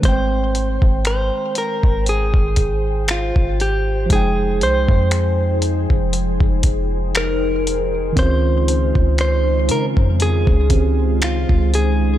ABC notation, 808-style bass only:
X:1
M:4/4
L:1/16
Q:"Swing 16ths" 1/4=59
K:Ab
V:1 name="808-style bass" clef=bass
A,,,3 A,,,2 z2 A,,,2 A,,,4 A,,,3 | F,,,2 C,, F,,4 F,,,2 F,,, F,,,6 | D,,3 D,,3 D, F,,2 D,,4 D,,2 C,, |]